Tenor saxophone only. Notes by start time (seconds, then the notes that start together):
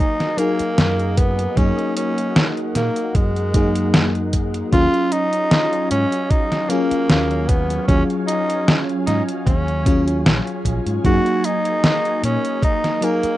0.00 D#4
0.38 A#3
1.18 B3
1.57 C#4
1.97 C#4
2.76 A#3
3.15 G#3
4.73 F4
5.12 D#4
5.91 C#4
6.31 D#4
6.70 A#3
7.49 B3
7.88 C#4
8.27 D#4
9.07 D#4
9.46 C#4
11.06 F#4
11.45 D#4
12.25 C#4
12.64 D#4
13.04 A#3